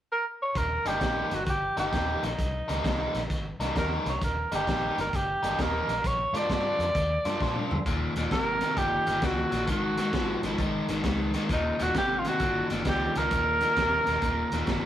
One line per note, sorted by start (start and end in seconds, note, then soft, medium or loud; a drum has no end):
0.12 0.25 A#4 medium
0.42 0.59 C#5 medium
0.55 0.76 D#1 medium
0.55 0.89 A#4 medium
0.55 kick medium
0.55 snare soft
0.55 closed hi-hat medium
0.85 0.96 G1 medium
0.85 0.99 D#3 medium
0.85 1.00 G3 medium
0.85 1.01 A#3 medium
0.85 1.01 D#4 medium
0.85 1.36 G4 medium
0.85 snare soft
0.85 closed hi-hat medium
1.01 1.22 A#1 medium
1.01 1.36 D#3 medium
1.01 1.36 G3 medium
1.01 1.36 A#3 medium
1.01 1.36 D#4 medium
1.01 kick medium
1.01 snare loud
1.01 closed hi-hat medium
1.31 1.42 G1 medium
1.31 1.44 F#4 medium
1.31 snare soft
1.31 closed hi-hat medium
1.46 1.68 G1 medium
1.46 1.51 F#4 medium
1.46 1.78 G4 medium
1.46 kick medium
1.46 snare soft
1.46 closed hi-hat medium
1.77 1.88 G1 medium
1.77 1.92 D#3 medium
1.77 1.92 G3 medium
1.77 1.93 A#3 medium
1.77 1.92 D#4 medium
1.77 2.26 G4 medium
1.77 snare soft
1.77 closed hi-hat medium
1.93 2.14 D#1 medium
1.93 2.27 D#3 medium
1.93 2.28 G3 medium
1.93 2.28 A#3 medium
1.93 2.28 D#4 medium
1.93 kick medium
1.93 snare medium
1.93 closed hi-hat medium
2.23 2.34 A#1 medium
2.23 3.15 D#4 medium
2.23 snare soft
2.23 closed hi-hat medium
2.39 2.60 C2 medium
2.39 kick medium
2.39 snare soft
2.39 closed hi-hat medium
2.68 2.80 C#2 medium
2.68 2.83 D#3 medium
2.68 2.84 G3 medium
2.68 2.84 A#3 medium
2.68 2.84 D#4 medium
2.68 snare soft
2.68 closed hi-hat medium
2.84 3.05 C2 medium
2.84 3.19 D#3 medium
2.84 3.19 G3 medium
2.84 3.19 A#3 medium
2.84 3.19 D#4 medium
2.84 kick medium
2.84 snare medium
2.84 closed hi-hat medium
3.14 3.25 A#1 medium
3.14 snare soft
3.14 closed hi-hat soft
3.30 3.51 G#1 medium
3.30 kick medium
3.30 snare soft
3.30 closed hi-hat medium
3.59 3.70 C2 medium
3.59 3.74 D#3 medium
3.59 3.75 G3 medium
3.59 3.75 A#3 medium
3.59 3.75 D#4 medium
3.59 snare soft
3.59 closed hi-hat medium
3.75 3.97 D#2 medium
3.75 4.10 D#3 medium
3.75 4.10 G3 medium
3.75 4.10 A#3 medium
3.75 4.10 D#4 medium
3.75 3.91 A#4 medium
3.75 kick medium
3.75 snare loud
3.75 closed hi-hat medium
4.06 4.16 C2 medium
4.06 snare soft
4.06 closed hi-hat medium
4.10 4.22 C#5 medium
4.22 4.42 D#1 medium
4.22 4.51 A#4 medium
4.22 kick medium
4.22 snare soft
4.22 closed hi-hat medium
4.51 4.62 G1 medium
4.51 4.66 D#3 medium
4.51 4.66 G3 medium
4.51 4.67 A#3 medium
4.51 4.67 D#4 medium
4.51 4.96 G4 medium
4.51 snare soft
4.51 closed hi-hat medium
4.67 4.88 A#1 medium
4.67 5.02 D#3 medium
4.67 5.02 G3 medium
4.67 5.02 A#3 medium
4.67 5.02 D#4 medium
4.67 kick medium
4.67 snare medium
4.67 closed hi-hat medium
4.98 5.08 G1 medium
4.98 5.17 A#4 medium
4.98 snare soft
4.98 closed hi-hat medium
5.13 5.34 G1 medium
5.13 5.63 G4 medium
5.13 kick medium
5.13 snare soft
5.13 closed hi-hat medium
5.43 5.54 G1 medium
5.43 5.57 D#3 medium
5.43 5.57 G3 medium
5.43 5.58 A#3 medium
5.43 5.58 D#4 medium
5.43 snare soft
5.43 closed hi-hat medium
5.58 5.80 D#1 medium
5.58 5.93 D#3 medium
5.58 5.93 G3 medium
5.58 5.93 A#3 medium
5.58 5.93 D#4 medium
5.58 6.09 A#4 medium
5.58 kick medium
5.58 snare loud
5.58 closed hi-hat medium
5.88 5.99 A#1 medium
5.88 snare soft
5.88 closed hi-hat medium
6.04 6.25 A#1 medium
6.04 6.39 C#5 medium
6.04 kick medium
6.04 snare soft
6.04 closed hi-hat medium
6.33 6.44 G#2 medium
6.33 6.48 F3 medium
6.33 6.48 A#3 medium
6.33 6.49 D4 medium
6.33 6.49 F4 medium
6.33 snare soft
6.33 closed hi-hat medium
6.37 7.72 D5 medium
6.49 6.71 G2 medium
6.49 6.84 F3 medium
6.49 6.84 A#3 medium
6.49 6.84 D4 medium
6.49 6.85 F4 medium
6.49 kick medium
6.49 snare loud
6.49 closed hi-hat medium
6.79 6.90 F2 medium
6.79 snare soft
6.79 closed hi-hat medium
6.95 7.16 D#2 medium
6.95 kick medium
6.95 snare soft
6.95 closed hi-hat medium
7.25 7.36 G2 medium
7.25 7.40 F3 medium
7.25 7.40 A#3 medium
7.25 7.40 D4 medium
7.25 7.41 F4 medium
7.25 snare soft
7.25 closed hi-hat medium
7.41 7.62 A#2 medium
7.41 7.75 F3 medium
7.41 7.75 A#3 medium
7.41 7.76 D4 medium
7.41 7.76 F4 medium
7.41 kick medium
7.41 snare medium
7.56 mid tom medium
7.71 7.82 G2 medium
7.71 floor tom medium
7.86 8.06 D#1 medium
7.86 8.13 D#2 medium
7.86 8.13 A#2 medium
7.86 kick medium
7.86 closed hi-hat medium
8.16 8.26 D#1 medium
8.16 8.30 D#2 medium
8.16 8.30 A#2 medium
8.16 snare soft
8.16 closed hi-hat medium
8.31 8.61 G#1 medium
8.31 8.58 D#2 medium
8.31 8.58 C3 medium
8.31 8.79 A#4 medium
8.31 kick medium
8.31 snare loud
8.31 closed hi-hat medium
8.61 8.75 D#2 medium
8.61 8.76 C3 medium
8.61 snare soft
8.61 closed hi-hat medium
8.76 8.97 G1 medium
8.76 9.04 D#2 medium
8.76 9.04 A#2 medium
8.76 9.26 G4 loud
8.76 kick medium
8.76 snare soft
8.76 closed hi-hat medium
9.06 9.17 G1 medium
9.06 9.21 D#2 medium
9.06 9.21 A#2 medium
9.06 snare soft
9.06 closed hi-hat medium
9.22 9.42 C#2 medium
9.22 9.49 D#2 medium
9.22 9.49 A#2 medium
9.22 9.69 F#4 medium
9.22 kick medium
9.22 snare loud
9.22 closed hi-hat medium
9.51 9.68 A#1 medium
9.51 9.66 D#2 medium
9.51 9.66 A#2 medium
9.51 snare soft
9.51 closed hi-hat medium
9.67 9.98 G#1 medium
9.67 9.94 G#2 medium
9.67 9.95 D#3 medium
9.67 kick medium
9.67 closed hi-hat medium
9.71 10.56 F#4 medium
9.97 10.12 G#2 medium
9.97 10.12 D#3 medium
9.97 snare soft
9.97 closed hi-hat medium
10.13 10.33 G#1 medium
10.13 10.40 G#2 medium
10.13 10.40 F3 medium
10.13 kick medium
10.13 snare loud
10.13 closed hi-hat medium
10.42 10.53 G#1 medium
10.42 10.57 G#2 medium
10.42 10.58 F3 medium
10.42 snare soft
10.42 closed hi-hat medium
10.58 10.78 G#1 medium
10.58 10.86 G#2 medium
10.58 10.86 D#3 medium
10.58 kick medium
10.58 closed hi-hat medium
10.88 10.99 G#1 medium
10.88 11.03 G#2 medium
10.88 11.03 D#3 medium
10.88 snare soft
10.88 closed hi-hat medium
11.04 11.34 C#2 medium
11.04 11.31 G#2 medium
11.04 11.31 D#3 medium
11.04 kick medium
11.04 snare loud
11.04 closed hi-hat medium
11.34 11.48 G#2 medium
11.34 11.48 D#3 medium
11.34 snare soft
11.34 closed hi-hat medium
11.49 11.69 D#1 medium
11.49 11.76 D#2 medium
11.49 11.76 A#2 medium
11.49 kick medium
11.49 snare soft
11.49 closed hi-hat medium
11.53 11.84 D#4 medium
11.79 11.90 D#1 medium
11.79 11.93 D#2 medium
11.79 11.93 A#2 medium
11.79 11.97 F#4 medium
11.79 snare soft
11.79 closed hi-hat medium
11.95 12.25 G#1 medium
11.95 12.22 D#2 medium
11.95 12.22 C3 medium
11.95 12.20 G4 medium
11.95 kick medium
11.95 snare loud
11.95 closed hi-hat medium
12.19 12.30 F4 medium
12.25 12.39 D#2 medium
12.25 12.39 C3 medium
12.25 12.72 F#4 medium
12.25 snare soft
12.25 closed hi-hat medium
12.40 12.60 G1 medium
12.40 12.68 D#2 medium
12.40 12.68 A#2 medium
12.40 kick medium
12.40 closed hi-hat medium
12.70 12.81 G1 medium
12.70 12.84 D#2 medium
12.70 12.84 A#2 medium
12.70 snare soft
12.70 closed hi-hat medium
12.85 13.05 C#2 medium
12.85 13.13 D#2 medium
12.85 13.13 A#2 medium
12.85 13.19 G4 medium
12.85 kick medium
12.85 snare loud
12.85 closed hi-hat medium
13.15 13.26 C#2 medium
13.15 13.30 D#2 medium
13.15 13.30 A#2 medium
13.15 14.86 A#4 loud
13.15 snare soft
13.15 closed hi-hat medium
13.31 13.62 D#1 medium
13.31 13.58 D#2 medium
13.31 13.59 A#2 medium
13.31 kick medium
13.31 closed hi-hat medium
13.61 13.75 D#2 medium
13.61 13.76 A#2 medium
13.61 snare soft
13.61 closed hi-hat medium
13.77 13.97 D#1 medium
13.77 14.04 D#2 medium
13.77 14.04 C3 medium
13.77 kick medium
13.77 snare loud
13.77 closed hi-hat medium
14.06 14.17 D#1 medium
14.06 14.20 D#2 medium
14.06 14.21 C3 medium
14.06 snare soft
14.06 closed hi-hat medium
14.22 14.42 D#1 medium
14.22 14.49 D#2 medium
14.22 14.49 A#2 medium
14.22 kick medium
14.22 closed hi-hat medium
14.52 14.62 D#1 medium
14.52 14.66 D#2 medium
14.52 14.67 A#2 medium
14.52 snare soft
14.52 closed hi-hat medium
14.67 14.86 G1 medium
14.67 14.86 D#2 medium
14.67 14.86 A#2 medium
14.67 kick medium
14.67 snare loud
14.67 closed hi-hat medium